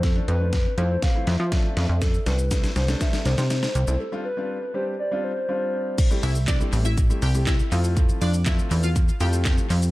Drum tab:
CC |----------------|----------------|----------------|x---------------|
HH |x-x-x-x-x-x-x-x-|x-x-x-x-x-x-x-x-|----------------|x-o-x-o-x-o-x-o-|
SH |----------------|xxxxxxxxxxxxxxxx|----------------|xxxxxxxxxxxxxxxx|
CP |----------------|----------------|----------------|----x-------x---|
SD |o---o---o-o-o-o-|o-o-oooooooooo--|----------------|----o-------o---|
BD |o---o---o---o---|o---o---o-------|----------------|o---o---o---o---|

CC |----------------|
HH |x-o-x-o-x-o-x-o-|
SH |xxxxxxxxxxxxxxxx|
CP |----x-------x---|
SD |----o-------o---|
BD |o---o---o---o---|